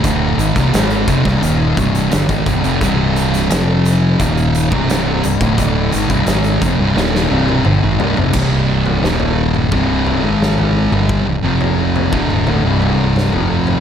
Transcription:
<<
  \new Staff \with { instrumentName = "Distorted electric guitar" } { \clef bass \time 4/4 \key c \minor \tempo 4 = 87 <d, a, d>8 <aes, ees>16 <c, g,>16 <aes, ees aes>8 <f, c>16 <c, g,>16 <ees, bes, ees>8 <c, g, c>8 <g, d>16 <aes, ees>16 <c, g,>16 <f, c>16 | <c, g, c>4 <f, c f>4 <ees, bes, ees>8. <c, g, c>8. <c, g,>16 <d, a,>16 | <d, a, d>8 <aes, ees>16 <c, g,>16 <aes, ees aes>8 <f, c>16 <c, g,>16 <ees, bes, ees>8 <c, g, c>8 <g, d>16 <aes, ees>16 <c, g,>16 <f, c>16 | <c, g, c>4 <ees, bes, ees>4 <c, g, c>8. <aes, ees aes>4 <g, d g>16~ |
<g, d g>16 <c, g,>16 <f, c f>4 <d, a, d>8. <c, g, c>4 <f, c f>8. | }
  \new Staff \with { instrumentName = "Distorted electric guitar" } { \clef bass \time 4/4 \key c \minor <d, a, d>8 <aes, ees>16 <c, g,>16 <aes, ees aes>8 <f, c>16 <c, g,>16 <ees, bes, ees>8 <c, g, c>8 <g, d>16 <aes, ees>16 <c, g,>16 <f, c>16 | <c, g, c>4 <f, c f>4 <ees, bes, ees>8. <c, g, c>8. <c, g,>16 <d, a,>16 | <d, a, d>8 <aes, ees>16 <c, g,>16 <aes, ees aes>8 <f, c>16 <c, g,>16 <ees, bes, ees>8 <c, g, c>8 <g, d>16 <aes, ees>16 <c, g,>16 <f, c>16 | <c, g, c>4 <ees, bes, ees>4 <c, g, c>8. <aes, ees aes>4 <g, d g>16~ |
<g, d g>16 <c, g,>16 <f, c f>4 <d, a, d>8. <c, g, c>4 <f, c f>8. | }
  \new Staff \with { instrumentName = "Fingered electric bass" } { \clef bass \time 4/4 \key c \minor d,,8 aes,,16 c,,16 aes,,8 f,,16 c,,16 ees,,8 c,,8 g,,16 aes,,16 c,,16 f,,16 | c,,4 f,,4 ees,,8. c,,8. c,,16 d,,16 | d,,8 aes,,16 c,,16 aes,,8 f,,16 c,,16 ees,,8 c,,8 g,,16 aes,,16 c,,16 f,,16 | c,,4 ees,,4 c,,8. aes,,4 g,,16~ |
g,,16 c,,16 f,,4 d,,8. c,,4 f,,8. | }
  \new DrumStaff \with { instrumentName = "Drums" } \drummode { \time 4/4 <hh bd>8 hh16 <hh bd sn>16 <hh sn>16 hh16 <hh bd>16 <bd sn>16 hh8 <hh bd>16 hh16 <hh sn>16 <hh bd>16 <hh bd>16 hh16 | <hh bd>8 hh16 <hh sn>16 <hh sn>8 hh8 <hh bd>16 hh16 hh16 bd16 <hh sn>8 hh16 <hh bd>16 | <hh bd>8 hh16 <hh bd>16 <hh sn>16 hh16 <hh bd>8 sn16 sn8 tommh16 toml8 tomfh16 tomfh16 | <cymc bd tomfh>8. tomfh16 sn16 tomfh8 toml16 <bd tomfh>8 tomfh8 sn16 tomfh8 toml16 |
<bd tomfh>8. tomfh16 r16 tomfh16 bd16 toml16 <tomfh toml>8 tomfh8 <sn toml>16 tomfh8 toml16 | }
>>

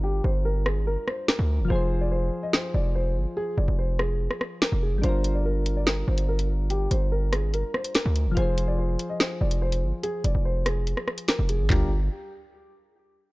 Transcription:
<<
  \new Staff \with { instrumentName = "Grand piano" } { \time 4/4 \key g \phrygian \tempo 4 = 144 g'8 c''8 bes'8 aes'8 bes'8 c''8 bes'4 | c''8. d''16 c''8. ees''16 c''8 d''8 c''8 r8 | aes'8 d''8 c''8 aes'4. bes'8 aes'8 | c''8. d''16 bes'8. d''16 bes'8 c''8 bes'8 r8 |
g'8 c''8 bes'8 aes'8 bes'8 c''8 bes'4 | c''8. d''16 c''8. ees''16 c''8 d''8 c''8 r8 | aes'8 d''8 c''8 aes'4. bes'8 aes'8 | g'8 r2. r8 | }
  \new Staff \with { instrumentName = "Synth keys" } { \time 4/4 \key g \phrygian <g d' f' bes'>1 | <f f' aes' c''>1~ | <f f' aes' c''>1 | <g d' f' bes'>1~ |
<g d' f' bes'>1 | <f f' aes' c''>1~ | <f f' aes' c''>1 | <g d' f' bes'>8 r2. r8 | }
  \new Staff \with { instrumentName = "808-style bass" } { \clef bass \time 4/4 \key g \phrygian g,,8 g,,4~ g,,16 aes,,16 g,,16 r4 d,8 f,,16 | f,,4. r4 f,,4 g,,16 r16 | r8 f,,16 f,,4. r4 f,,8 aes,,16 | g,,2~ g,,8 g,,4.~ |
g,,8 g,,4~ g,,16 aes,,16 g,,16 r4 d,8 f,,16 | f,,4. r4 f,,4 g,,16 r16 | r8 f,,16 f,,4. r4 f,,8 aes,,16 | g,,4 r2. | }
  \new DrumStaff \with { instrumentName = "Drums" } \drummode { \time 4/4 r4 r8 ss8 r8 ss8 sn4 | r4 r4 sn4 r4 | r4 r8 ss8 r16 ss16 ss8 sn4 | hh8 hh8 r8 hh8 <hh sn>8. hh16 r16 hh8. |
hh8 hh8 r8 <hh ss>8 hh8 ss16 hh16 <hh sn>8 hh8 | hh8 hh8 r8 hh8 <hh sn>8. hh16 r16 hh8. | hh8 hh8 r8 <hh ss>8 hh16 ss16 ss16 hh16 <hh sn>8 hh8 | <hc bd tomfh>4 r4 r4 r4 | }
>>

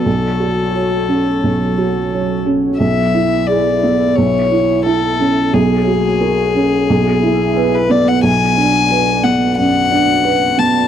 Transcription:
<<
  \new Staff \with { instrumentName = "Violin" } { \time 4/4 \key b \dorian \tempo 4 = 88 a'2.~ a'8 r8 | e''4 d''4 cis''4 a'4 | gis'2.~ gis'16 b'16 d''16 fis''16 | gis''4. fis''8 fis''4. a''8 | }
  \new Staff \with { instrumentName = "Ambient pad" } { \time 4/4 \key b \dorian << { <fis' cis''>1 | <e' e''>1 | <fis' cis''>2 <e' e''>2 | <fis' d''>1 | } \\ { fis1 | b1 | ais2 b2~ | b1 | } >> }
  \new Staff \with { instrumentName = "Felt piano" } { \time 4/4 \key b \dorian b,,8 fis'8 cis''8 cis'8 b,,8 fis'8 cis''8 cis'8 | b,,8 e'8 gis'8 b8 b,,8 e'8 e'8 cis'8 | b,,8 fis'8 ais'8 cis'8 b,,8 e'8 b'8 b8 | b,,8 d'8 b'8 b8 fis,8 d'8 b'8 b8 | }
>>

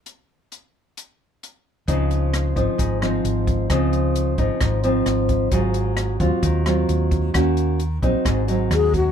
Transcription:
<<
  \new Staff \with { instrumentName = "Alto flute" } { \time 4/4 \key des \major \tempo 4 = 132 r1 | r1 | r1 | r1 |
r2. aes'8 ges'8 | }
  \new Staff \with { instrumentName = "Nylon-string guitar" } { \time 4/4 \key des \major << { r1 | <f c' ees'>4. <f c' ees'>4 <f c' ees'>4. | <f c' ees'>4. <f c' ees'>4 <f c' ees'>4. | <ges c' f'>4. <ges c' f'>4 <ges c' f'>4. |
<bes des' ges'>4 r8 <ges c' ees'>4 <ges c' ees'>4. | } \\ { r1 | des2 aes,2 | des2 aes,2 | aes,2 ees2 |
ees2 aes,2 | } >> }
  \new Staff \with { instrumentName = "Fingered electric bass" } { \clef bass \time 4/4 \key des \major r1 | des,4. aes,,16 r16 aes,,4 aes,,4 | des,4. aes,,16 r16 aes,,4 aes,,4 | aes,,4. ees,16 r16 ees,4 ees,4 |
ees,4. bes,,16 r16 aes,,4 ees,4 | }
  \new DrumStaff \with { instrumentName = "Drums" } \drummode { \time 4/4 hh4 hh4 hh4 hh4 | <hh bd>8 hh8 <hh ss>8 <hh bd>8 <hh bd>8 <hh ss>8 hh8 <hh bd>8 | <hh bd ss>8 hh8 hh8 <hh bd>8 <hh bd ss>8 hh8 <hh ss>8 <hh bd>8 | <hh bd>8 hh8 <hh ss>8 <hh bd>8 <hh bd>8 <hh ss>8 hh8 <hh bd>8 |
<hh bd ss>8 hh8 hh8 <hh bd>8 <hh bd ss>8 hh8 <hh ss>8 <hh bd>8 | }
>>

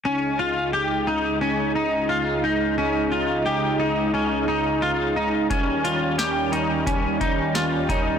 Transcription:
<<
  \new Staff \with { instrumentName = "Clean electric guitar" } { \time 4/4 \key des \lydian \tempo 4 = 88 des'8 f'8 g'8 ees'8 des'8 ees'8 f'8 ees'8 | des'8 f'8 g'8 ees'8 des'8 ees'8 f'8 ees'8 | des'8 f'8 g'8 ees'8 des'8 ees'8 f'8 ees'8 | }
  \new Staff \with { instrumentName = "Analog synth pad" } { \clef bass \time 4/4 \key des \lydian <des, des aes ees'>1~ | <des, des aes ees'>1 | <ees, ees g des'>1 | }
  \new DrumStaff \with { instrumentName = "Drums" } \drummode { \time 4/4 r4 r4 r4 r4 | r4 r4 r4 r4 | <hh bd>8 hh8 <hh sn>8 hh8 <hh bd>8 <hh bd>8 <hh sn>8 <hh bd>8 | }
>>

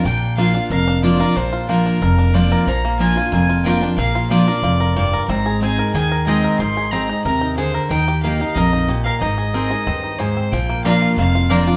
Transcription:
<<
  \new Staff \with { instrumentName = "Fiddle" } { \time 4/4 \key bes \mixolydian \tempo 4 = 183 g''4 f''4 f''4 d''4 | c''4 bes'2 d''4 | bes''4 aes''4 aes''4 g''4 | f''4 d''2 d''4 |
bes''4 aes''4 aes''4 ees''4 | c'''4 bes''4 bes''4 c''4 | g''4 f''4 ees''4 r8 f''8 | ees''2. c''4 |
g''4 f''4 f''4 d''4 | }
  \new Staff \with { instrumentName = "Mandolin" } { \time 4/4 \key bes \mixolydian r1 | r1 | r1 | r1 |
r1 | r1 | r1 | r1 |
r4 <bes f' d'' bes''>8 r4. <bes f' d'' bes''>8 r8 | }
  \new Staff \with { instrumentName = "Five-string banjo" } { \time 4/4 \key bes \mixolydian d'4 bes8 d'8 bes'8 d'8 f'8 bes'8 | d'8 f'8 bes8 d'8 bes'8 d'8 f'8 bes'8 | f8 bes8 bes'8 f'8 bes8 f'8 bes'8 d'8 | bes8 f'8 bes8 bes'8 f'8 bes'8 f'8 bes'8 |
c'8 aes'8 c'8 bes'8 aes'8 bes'8 aes'8 bes'8 | ees'8 aes'8 c'8 ees'8 bes'8 ees'8 aes'8 bes'8 | ees'8 g'8 bes8 ees'8 bes'8 ees'8 g'8 bes'8 | ees'8 aes'8 bes'8 aes'8 c'8 ees'8 aes'8 c'8 |
f8 bes8 bes'8 f'8 bes8 f'8 bes'8 d'8 | }
  \new Staff \with { instrumentName = "Steel-string acoustic guitar" } { \time 4/4 \key bes \mixolydian << { r4 <f bes d' f'>8 <d' f'>8 r4 <f bes d' f'>8 <d' f'>8 | r4 <f bes d' f'>4 r4 <f bes d' f'>4 | r4 <f bes d' f'>8 <d' f'>8 r4 <f bes d' f'>8 <d' f'>8 | r4 <f bes d' f'>8 <d' f'>8 r2 |
r4 <aes c' ees' aes'>8 <ees' aes'>8 r4 <aes c' ees' aes'>4 | r4 <aes c' ees' aes'>8 <ees' aes'>8 r2 | r4 <ees bes ees' g'>8 <ees' g'>8 r2 | r4 <aes c' ees' aes'>8 <ees' aes'>8 r2 |
r4 <f bes d' f'>4 r4 <f bes d' f'>8 <d' f'>8 | } \\ { bes,2 f,2 | bes,2 f,2 | r2 f,2 | bes,2 f,4 g,4 |
aes,2 ees2 | aes,2 c4 d4 | ees2 f,4 bes,4 | aes,2 g,4 aes,4 |
bes,2 f,2 | } >> }
  \new Staff \with { instrumentName = "Upright bass" } { \clef bass \time 4/4 \key bes \mixolydian bes,,2 f,,2 | bes,,2 f,,2 | bes,,2 f,,2 | bes,,2 f,,2 |
aes,,2 ees,2 | aes,,2 ees,2 | ees,2 bes,,2 | aes,,2 ees,2 |
bes,,2 f,,2 | }
>>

